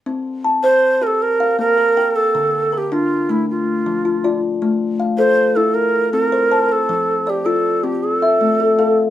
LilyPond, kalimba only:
\new Staff \with { instrumentName = "Kalimba" } { \time 12/8 \key c \mixolydian \tempo 4. = 105 << { r4 a''4. r4 f''4 bes'8 g''4~ | g''8 r8 bes'4. r2 f'8 d''4~ | d''8 r8 f''4. r2 c''8 a''4~ | a''8 r8 d''4. r4 e''4 a'8 f''4 | } \\ { c'4 r8 c''4 g'8 r4 bes4 bes'4 | d4 r8 d'4 a8 r4 f4 f'4 | a4 r8 a'4 e'8 r4 c'4 c''4 | f4 r8 f'4 c'8 r4 a4 a'4 | } >> }